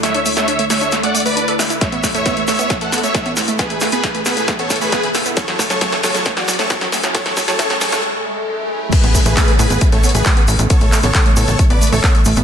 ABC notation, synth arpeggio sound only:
X:1
M:4/4
L:1/16
Q:1/4=135
K:A
V:1 name="Synth arpeggio sound"
A, D A, A, D A, A, D A, A, A, A, D A e E | A, B, A, A, B, A, A, B, A, A, B, A, A, B, A, A, | B, A, A, B, A, A, B, A, A, B, A, A, B, A, A, B, | F, F, A, F, F, A, F, F, A, F, F, A, F, F, A, F, |
F, A, F, F, A, F, F, A, z8 | A, B, A, A, B, A, A, B, A, A, B, A, A, B, A, A, | B, A, A, B, A, A, B, A, A, B, A, A, B, A, A, B, |]